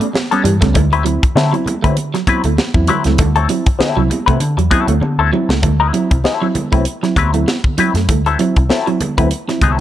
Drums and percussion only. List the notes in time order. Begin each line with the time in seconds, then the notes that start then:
0.01 closed hi-hat
0.14 snare, muted conga, high conga
0.32 closed hi-hat
0.45 closed hi-hat, low conga
0.62 kick, snare, closed hi-hat
0.75 kick, closed hi-hat, muted conga, low conga
0.93 closed hi-hat
1.06 closed hi-hat, muted conga
1.23 kick, closed hi-hat
1.37 snare, muted conga, high conga
1.54 closed hi-hat
1.68 closed hi-hat, high conga, low conga
1.84 kick, closed hi-hat
1.97 closed hi-hat, muted conga
2.15 snare, closed hi-hat
2.27 kick, closed hi-hat, muted conga, high conga
2.44 closed hi-hat
2.58 snare, muted conga, high conga
2.74 kick
2.87 closed hi-hat, muted conga, low conga
3.04 snare, closed hi-hat
3.18 kick, closed hi-hat, muted conga, low conga
3.36 closed hi-hat
3.49 closed hi-hat, muted conga
3.66 kick, closed hi-hat
3.80 snare, muted conga, high conga
4.11 closed hi-hat, muted conga, high conga, low conga
4.28 kick, closed hi-hat
4.40 closed hi-hat, muted conga
4.59 closed hi-hat
4.71 kick, closed hi-hat, high conga
4.88 closed hi-hat
5.03 muted conga, high conga
5.34 muted conga, low conga
5.50 snare
5.63 kick, closed hi-hat, muted conga, low conga
5.94 closed hi-hat, muted conga
6.11 kick, closed hi-hat
6.24 snare, muted conga
6.55 closed hi-hat, high conga, low conga
6.73 kick, closed hi-hat
6.85 closed hi-hat
7.04 snare, closed hi-hat
7.16 kick, closed hi-hat, high conga
7.34 closed hi-hat
7.48 snare, high conga
7.64 kick
7.78 closed hi-hat, low conga
7.95 snare, closed hi-hat
8.09 kick, closed hi-hat, muted conga, low conga
8.26 closed hi-hat
8.39 closed hi-hat
8.56 kick, closed hi-hat
8.70 snare, muted conga
8.87 closed hi-hat
9.01 closed hi-hat, muted conga, high conga, low conga
9.18 kick, closed hi-hat
9.31 closed hi-hat
9.49 snare, closed hi-hat
9.61 kick, closed hi-hat, muted conga, high conga